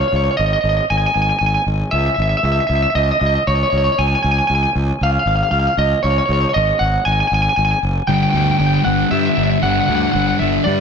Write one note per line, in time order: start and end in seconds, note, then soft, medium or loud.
0.01 0.08 C#5 medium
0.08 0.15 C#5 medium
0.12 0.28 C#2 medium
0.12 0.23 C#5 medium
0.24 0.30 C#5 medium
0.31 0.37 C#5 medium
0.37 0.54 G#1 medium
0.37 0.45 D#5 medium
0.46 0.53 D#5 medium
0.53 0.60 D#5 medium
0.61 0.79 G#1 medium
0.61 0.69 D#5 medium
0.69 0.76 D#5 medium
0.77 0.85 D#5 medium
0.90 1.05 G#1 medium
0.90 0.97 G#5 medium
0.97 1.05 G#5 medium
1.06 1.14 G#5 medium
1.14 1.31 G#1 medium
1.14 1.21 G#5 medium
1.22 1.29 G#5 medium
1.29 1.38 G#5 medium
1.39 1.56 G#1 medium
1.39 1.46 G#5 medium
1.46 1.54 G#5 medium
1.54 1.63 G#5 medium
1.66 1.82 G#1 medium
1.91 2.08 C#2 medium
1.91 1.98 E5 medium
1.99 2.06 E5 soft
2.06 2.14 E5 medium
2.14 2.33 G#1 medium
2.14 2.21 E5 medium
2.22 2.29 E5 medium
2.29 2.37 E5 medium
2.37 2.45 E5 medium
2.43 2.59 C#2 medium
2.43 2.51 E5 medium
2.52 2.59 E5 medium
2.60 2.67 E5 medium
2.67 2.85 C#2 medium
2.67 2.75 E5 medium
2.75 2.82 E5 medium
2.82 2.90 E5 medium
2.90 2.95 E5 soft
2.95 3.10 C#2 medium
2.95 3.03 D#5 medium
3.03 3.11 D#5 medium
3.11 3.19 D#5 medium
3.20 3.36 C#2 medium
3.20 3.26 D#5 medium
3.26 3.34 D#5 medium
3.35 3.43 D#5 medium
3.47 3.62 C#2 medium
3.47 3.55 C#5 medium
3.55 3.62 C#5 medium
3.63 3.70 C#5 medium
3.70 3.88 C#2 medium
3.70 3.77 C#5 medium
3.78 3.84 C#5 medium
3.84 3.92 C#5 medium
3.92 4.00 C#5 medium
3.98 4.14 C#2 medium
3.98 4.07 G#5 medium
4.08 4.15 G#5 medium
4.15 4.22 G#5 medium
4.22 4.39 C#2 medium
4.22 4.31 G#5 medium
4.31 4.38 G#5 medium
4.38 4.46 G#5 medium
4.47 4.65 C#2 medium
4.47 4.54 G#5 medium
4.55 4.63 G#5 medium
4.63 4.71 G#5 medium
4.75 4.91 C#2 medium
5.01 5.16 C#2 medium
5.01 5.11 F5 medium
5.12 5.19 F5 medium
5.19 5.27 F5 medium
5.25 5.41 G#1 medium
5.25 5.35 F5 medium
5.36 5.43 F5 medium
5.43 5.51 F5 medium
5.51 5.67 C#2 medium
5.51 5.59 F5 medium
5.59 5.67 F5 medium
5.67 5.75 F5 medium
5.77 5.93 C#2 medium
5.77 6.02 D#5 medium
6.03 6.19 C#2 medium
6.03 6.10 C#5 medium
6.10 6.18 C#5 medium
6.18 6.25 C#5 medium
6.26 6.44 C#2 medium
6.26 6.32 C#5 medium
6.33 6.40 C#5 medium
6.41 6.48 C#5 medium
6.49 6.54 C#5 medium
6.54 6.71 G#1 medium
6.54 6.78 D#5 medium
6.79 6.96 G#1 medium
6.79 7.05 F#5 medium
7.05 7.21 G#1 medium
7.05 7.12 G#5 medium
7.12 7.20 G#5 medium
7.20 7.27 G#5 medium
7.27 7.47 G#1 medium
7.27 7.34 G#5 medium
7.34 7.42 G#5 medium
7.42 7.49 G#5 medium
7.49 7.56 G#5 medium
7.56 7.72 G#1 medium
7.56 7.64 G#5 medium
7.65 7.71 G#5 medium
7.71 7.79 G#5 medium
7.83 7.98 F#1 medium
8.07 8.24 G1 medium
8.07 8.34 G2 medium
8.07 8.34 D3 medium
8.07 8.35 G3 medium
8.07 8.13 G5 medium
8.14 8.21 G5 medium
8.23 8.30 G5 medium
8.30 8.50 D2 medium
8.30 8.37 G5 medium
8.35 8.58 G2 medium
8.35 8.58 D3 medium
8.35 8.59 G3 medium
8.35 8.44 G5 medium
8.44 8.51 G5 medium
8.51 8.58 G5 medium
8.59 8.76 G1 medium
8.59 8.83 G2 medium
8.59 8.83 D3 medium
8.59 8.84 G3 medium
8.59 8.66 G5 medium
8.66 8.74 G5 medium
8.74 8.81 G5 medium
8.84 9.02 G1 medium
8.84 9.09 G2 medium
8.84 9.09 D3 medium
8.84 9.10 G3 medium
8.84 9.11 F#5 medium
9.10 9.35 G2 medium
9.10 9.28 G2 medium
9.10 9.36 D3 medium
9.10 9.36 G3 medium
9.10 9.19 E5 medium
9.19 9.26 E5 medium
9.26 9.34 E5 medium
9.35 9.54 G1 medium
9.35 9.62 G2 medium
9.35 9.62 D3 medium
9.35 9.62 G3 medium
9.35 9.43 E5 medium
9.44 9.50 E5 medium
9.50 9.58 E5 medium
9.62 9.79 G1 medium
9.62 9.88 G2 medium
9.62 9.88 D3 medium
9.62 9.89 G3 medium
9.62 9.70 F#5 medium
9.71 9.79 F#5 medium
9.80 9.86 F#5 medium
9.86 10.05 D2 medium
9.86 10.12 G2 medium
9.86 10.13 D3 medium
9.86 10.14 G3 medium
9.86 9.94 F#5 medium
9.96 10.02 F#5 medium
10.03 10.11 F#5 medium
10.12 10.31 G1 medium
10.12 10.38 G2 medium
10.12 10.39 D3 medium
10.12 10.39 G3 loud
10.12 10.19 F#5 medium
10.19 10.27 F#5 medium
10.28 10.36 F#5 medium
10.39 10.57 G1 medium
10.39 10.65 G2 medium
10.39 10.65 D3 medium
10.39 10.65 G3 medium
10.39 10.64 E5 medium
10.64 10.80 G2 medium
10.64 10.80 D3 medium
10.64 10.80 G3 medium
10.64 10.70 D5 medium
10.71 10.79 D5 medium